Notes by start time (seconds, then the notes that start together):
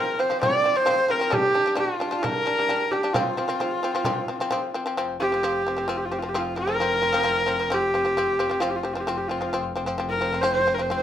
Already playing: F3 C4 A#4
0.19 F3 C4 C5
0.30 F3 C4, frame drum
0.41 F3 C4 D5, frame drum
0.64 F3 C4
0.76 F3 C4 C5, frame drum
0.86 F3 C4, frame drum
1.08 F3 C4 A#4, frame drum
1.20 F3 C4
1.30 G3 D4 G4, frame drum
1.54 G3 D4
1.66 G3 D4, frame drum
1.75 G3 D4 F4, frame drum
2.00 G3 D4
2.11 G3 D4, frame drum
2.22 G3 D4 A#4, frame drum
2.46 G3 D4
2.58 G3 D4, frame drum
2.69 G3 D4, frame drum
2.91 G3 D4 G4, frame drum
3.03 G3 D4
3.13 F3 C4 F4, frame drum
3.37 F3 C4
3.48 F3 C4, frame drum
3.60 F3 C4, frame drum
3.83 F3 C4
3.94 F3 C4, frame drum
4.04 F3 C4, frame drum
4.28 F3 C4
4.40 F3 C4, frame drum
4.50 F3 C4, frame drum
4.74 F3 C4
4.86 F3 C4
4.97 F1 F3 C4
5.20 F3 C4 G4
5.32 F3 C4
5.43 F3 C4
5.67 F3 C4
5.77 F3 C4
5.87 F3 C4 F4
5.97 G4
6.05 F4
6.11 F3 C4 G4
6.18 F3 F4
6.23 C4
6.29 G4
6.34 F3 C4 F4
6.56 F3 C4 A#4
6.67 F3 C4
6.80 F3 C4
7.02 F3 C4
7.13 F3 C4
7.24 F3 C4
7.46 F3 C4
7.60 F3 C4
7.70 F3 C4 G4
7.94 F3 C4
8.05 F3 C4
8.17 F3 C4
8.39 F3 C4
8.50 F3 C4
8.60 F1 F3 C4 F4
8.70 G4
8.76 F4
8.83 F3 C4 G4
8.93 F3 C4 F4
9.00 G4
9.07 F3 C4 F4
9.17 G4
9.28 F3 C4 F4
9.41 F3 C4
9.53 F3 C4
9.76 F3 C4
9.86 F3 C4
9.98 F3 C4
10.09 A#4
10.21 F3 C4
10.32 F3 C4
10.41 F3 C4 C5
10.53 C5
10.67 F3 C4
10.74 F3 A#4
10.79 C4 C5
10.90 F3 C4
10.96 C5